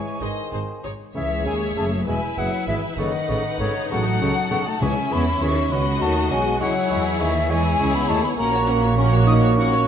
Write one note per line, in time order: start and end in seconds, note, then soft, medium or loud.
0.00 0.21 E3 soft
0.00 0.20 G#3 medium
0.00 0.82 G#4 soft
0.00 0.24 C#5 medium
0.00 0.20 G#5 medium
0.00 0.81 G#5 soft
0.21 0.30 G#1 soft
0.21 0.83 D#3 soft
0.21 0.29 D#4 soft
0.21 0.29 G#4 soft
0.21 0.85 C5 soft
0.21 0.51 D#5 medium
0.51 0.61 G#1 soft
0.51 0.61 D#4 soft
0.51 0.61 G#4 soft
0.51 0.59 C5 soft
0.84 0.92 G#1 soft
0.84 0.92 D#4 soft
0.84 0.92 G#4 soft
0.84 0.92 C#5 soft
1.15 1.44 C#2 medium
1.15 1.29 C#3 medium
1.15 1.44 E3 medium
1.15 2.03 G#4 medium
1.15 1.30 G#4 medium
1.15 2.03 C#5 medium
1.15 2.03 E5 medium
1.15 1.44 E5 medium
1.15 1.30 E5 medium
1.45 1.77 D#2 medium
1.45 1.60 C#3 soft
1.45 1.77 G#3 medium
1.45 1.60 G#4 soft
1.45 1.60 E5 soft
1.45 1.54 G#5 medium
1.75 2.07 F#1 medium
1.75 2.07 F#2 medium
1.75 1.90 C#3 medium
1.75 2.07 A3 medium
1.75 1.90 G#4 soft
1.75 1.90 E5 soft
1.75 1.84 A5 medium
2.06 2.15 E1 medium
2.06 2.16 E2 medium
2.06 2.21 B2 medium
2.06 2.20 G#3 medium
2.06 2.98 E4 medium
2.06 2.20 G#4 soft
2.06 2.96 B4 medium
2.06 2.97 E5 medium
2.06 2.22 E5 soft
2.06 2.40 G#5 medium
2.36 2.46 F#1 medium
2.36 2.46 F#2 medium
2.36 2.51 B2 soft
2.36 2.66 F#3 medium
2.36 2.51 G#4 soft
2.36 2.51 E5 soft
2.36 2.67 F#5 medium
2.68 2.76 G#1 medium
2.68 2.76 G#2 medium
2.68 2.82 B2 soft
2.68 2.98 E3 medium
2.68 2.82 G#4 medium
2.68 2.74 E5 medium
2.68 2.81 E5 soft
2.97 3.07 F#1 medium
2.97 3.06 F#2 medium
2.97 3.12 C#3 medium
2.97 3.59 D#3 medium
2.97 4.82 D#4 medium
2.97 3.12 A4 medium
2.97 3.89 B4 medium
2.97 3.12 C#5 medium
2.97 3.59 D#5 medium
2.97 3.91 F#5 medium
3.29 3.37 A1 medium
3.29 3.37 A2 medium
3.29 3.43 C#3 medium
3.29 3.43 A4 medium
3.29 3.43 C#5 medium
3.60 3.68 G#1 medium
3.60 3.68 G#2 medium
3.60 3.74 C#3 medium
3.60 3.91 C#3 medium
3.60 3.74 A4 medium
3.60 3.74 C#5 medium
3.60 3.90 C#5 medium
3.90 4.21 A1 medium
3.90 4.21 A2 medium
3.90 4.05 C#3 medium
3.90 4.65 F#3 medium
3.90 4.81 A4 medium
3.90 4.05 A4 medium
3.90 4.05 C#5 medium
3.90 4.69 F#5 medium
3.90 4.80 F#5 medium
4.21 4.29 C#2 medium
4.21 4.29 C#3 medium
4.21 4.35 C#3 soft
4.21 4.35 A4 medium
4.21 4.35 C#5 medium
4.51 4.60 B1 medium
4.51 4.59 B2 medium
4.51 4.65 C#3 medium
4.51 4.64 A4 medium
4.51 4.65 C#5 medium
4.67 4.74 A3 medium
4.67 4.84 A5 medium
4.81 4.90 C#2 medium
4.81 4.89 C#3 medium
4.81 5.68 C#3 medium
4.81 4.95 E3 medium
4.81 4.96 G#3 medium
4.81 5.70 C#4 medium
4.81 5.72 E4 medium
4.81 4.95 G#4 medium
4.81 4.95 C#5 medium
4.81 5.72 E5 medium
4.81 5.14 G#5 medium
5.10 5.41 E2 medium
5.10 5.25 E3 medium
5.10 5.41 E3 medium
5.10 5.26 B3 medium
5.10 5.24 G#4 medium
5.10 5.26 C#5 medium
5.10 5.44 B5 medium
5.41 5.71 D#2 medium
5.41 5.71 D#3 medium
5.41 5.55 E3 medium
5.41 5.72 C#4 medium
5.41 5.55 G#4 medium
5.41 5.55 C#5 medium
5.41 5.74 C#6 medium
5.71 6.01 C#2 medium
5.71 6.01 C#3 medium
5.71 5.85 F#3 medium
5.71 5.86 B3 medium
5.71 5.85 F#4 medium
5.71 6.59 F#4 medium
5.71 6.61 F#4 medium
5.71 5.86 C#5 medium
5.71 6.61 D#5 medium
5.71 6.03 B5 medium
6.01 6.31 D#2 medium
6.01 6.31 D#3 medium
6.01 6.15 F#3 medium
6.01 6.31 A3 medium
6.01 6.14 F#4 medium
6.01 6.15 C#5 medium
6.01 6.31 A5 loud
6.30 6.61 B1 medium
6.30 6.61 B2 medium
6.30 6.45 F#3 medium
6.30 6.61 G#3 medium
6.30 6.44 F#4 medium
6.30 6.44 C#5 medium
6.30 6.60 G#5 loud
6.60 6.69 C#2 medium
6.60 6.69 C#3 medium
6.60 7.19 F#3 medium
6.60 6.74 G#3 medium
6.60 6.74 E4 medium
6.60 7.49 E4 medium
6.60 7.48 G#4 medium
6.60 7.49 C#5 medium
6.60 6.74 C#5 medium
6.60 7.22 F#5 medium
6.90 7.20 E2 medium
6.90 7.20 E3 medium
6.90 7.04 G#3 medium
6.90 7.04 E4 medium
6.90 7.04 C#5 medium
7.20 7.50 D#2 medium
7.20 7.50 D#3 medium
7.20 7.50 E3 medium
7.20 7.33 G#3 medium
7.20 7.34 E4 medium
7.20 7.34 C#5 medium
7.20 7.52 E5 medium
7.49 7.80 E2 medium
7.49 7.80 E3 medium
7.49 7.63 G#3 medium
7.49 7.95 G#3 medium
7.49 7.63 E4 medium
7.49 8.37 E4 medium
7.49 8.37 G#4 medium
7.49 7.63 C#5 medium
7.49 8.37 C#5 medium
7.49 7.96 G#5 loud
7.79 8.09 C#2 medium
7.79 8.09 C#3 medium
7.79 7.93 G#3 medium
7.79 7.93 E4 medium
7.79 7.93 C#5 medium
7.93 8.09 B3 medium
7.93 8.10 B5 loud
8.09 8.18 D#2 medium
8.09 8.18 D#3 medium
8.09 8.23 G#3 medium
8.09 8.24 A3 medium
8.09 8.23 E4 medium
8.09 8.23 C#5 medium
8.09 8.23 A5 loud
8.23 8.38 B3 medium
8.23 8.30 B5 medium
8.38 9.88 A#1 medium
8.38 9.88 A#2 medium
8.38 9.88 A#3 medium
8.38 8.97 A#3 medium
8.38 8.53 C#4 medium
8.38 9.88 F#4 medium
8.38 8.52 A#4 medium
8.38 9.88 C#5 medium
8.38 8.52 F#5 medium
8.38 8.96 A#5 loud
8.54 8.69 F#4 medium
8.54 8.68 C#5 medium
8.68 8.83 C#4 medium
8.68 8.83 A#4 medium
8.68 8.83 F#5 medium
8.83 8.98 F#4 medium
8.83 8.98 C#5 medium
8.98 9.12 C#4 medium
8.98 9.11 C#4 medium
8.98 9.12 A#4 medium
8.98 9.12 F#5 medium
8.98 9.04 C#6 medium
9.12 9.28 F#4 medium
9.12 9.27 C#5 medium
9.12 9.28 C#5 medium
9.27 9.43 C#4 medium
9.27 9.57 D#4 medium
9.27 9.43 A#4 medium
9.27 9.43 F#5 medium
9.27 9.34 D#6 loud
9.42 9.57 F#4 medium
9.42 9.57 C#5 medium
9.42 9.58 C#5 medium
9.56 9.88 C#4 medium
9.56 9.71 C#4 medium
9.56 9.71 A#4 medium
9.56 9.71 F#5 medium
9.56 9.88 C#6 loud
9.72 9.87 F#4 medium
9.72 9.87 C#5 medium